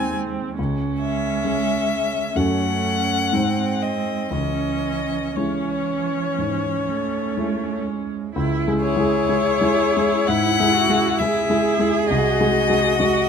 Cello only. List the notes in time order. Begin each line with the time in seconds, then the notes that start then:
Already playing: G#3
0.58 G#3
2.38 A3
3.33 G#3
4.31 E3
5.35 E3
6.88 A3
7.87 G#3
8.35 E4
8.81 G#4
10.30 E4
10.74 F#4
11.19 G#4
12.98 F#4